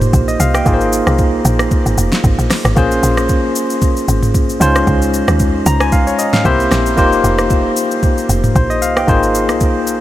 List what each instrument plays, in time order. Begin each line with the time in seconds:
Already playing: log drum bass F1, tine electric piano A#3 D#4 F4 G4 C5
0.01 mid tom, shaker
0.13 log drum bass A#1, kick, shaker
0.28 tine electric piano D#5, shaker
0.40 log drum bass C2, tine electric piano F5, shaker
0.54 tine electric piano G5, cross-stick, shaker
0.65 log drum bass G#1, tine electric piano A#3 D#4 F4 G#4 A#4, kick, shaker
0.74 tine electric piano C5
0.81 shaker
0.93 shaker
1.07 log drum bass C2, cross-stick, shaker
1.18 kick, shaker
1.45 log drum bass A#1, shaker
1.59 cross-stick, shaker
1.71 kick, shaker
1.86 log drum bass G#1, shaker
1.98 log drum bass F1, shaker
2.12 snare, shaker
2.24 log drum bass G#1, kick, shaker
2.39 log drum bass A#1, shaker
2.50 cross-stick, snare, open hi-hat, shaker
2.65 log drum bass G#1, cross-stick, shaker
2.76 log drum bass A#1, tine electric piano A#3 C#4 F4 G#4 C5, kick, shaker
2.91 shaker
3.03 log drum bass A#1, shaker
3.17 cross-stick, shaker
3.29 kick, shaker
3.56 shaker
3.70 shaker
3.82 kick, shaker
3.97 shaker
4.08 log drum bass G#1, shaker
4.23 mid tom, shaker
4.35 log drum bass A#1, kick, shaker
4.50 shaker
4.60 log drum bass C#2, tine electric piano G#3 C#4 D#4 F4 C5, shaker
4.76 cross-stick, shaker
4.87 log drum bass C#2, kick, shaker
5.02 shaker
5.14 shaker
5.28 log drum bass D#2, cross-stick, shaker
5.40 kick, shaker
5.66 log drum bass C#2, tine electric piano A#5, shaker
5.80 tine electric piano G#5, cross-stick, shaker
5.92 tine electric piano F5, kick, shaker
6.07 tine electric piano C#5, shaker
6.19 tine electric piano D#5, shaker
6.33 tine electric piano F5, snare, mid tom, shaker
6.44 log drum bass C2, tine electric piano A#3 C4 E4 G4 C5 E5, kick, shaker
6.60 shaker
6.71 log drum bass A#1, cross-stick, snare, shaker
6.86 shaker
6.97 log drum bass F1, tine electric piano A#3 D#4 F4 G4 C5, kick, shaker
7.12 shaker
7.24 log drum bass F1, shaker
7.39 cross-stick, shaker
7.50 kick, shaker
7.77 shaker
7.91 shaker
8.03 kick, shaker
8.18 shaker
8.29 log drum bass F1, shaker
8.44 mid tom, shaker
8.56 log drum bass A#1, tine electric piano C5, kick, shaker
8.70 tine electric piano D#5, shaker
8.82 log drum bass C2, tine electric piano F5, shaker
8.96 tine electric piano G5, cross-stick, shaker
9.07 log drum bass G#1, tine electric piano A#3 D#4 F4 G#4 C5, kick, shaker
9.23 shaker
9.35 shaker
9.49 log drum bass C2, cross-stick, shaker
9.61 kick, shaker
9.87 log drum bass A#1, shaker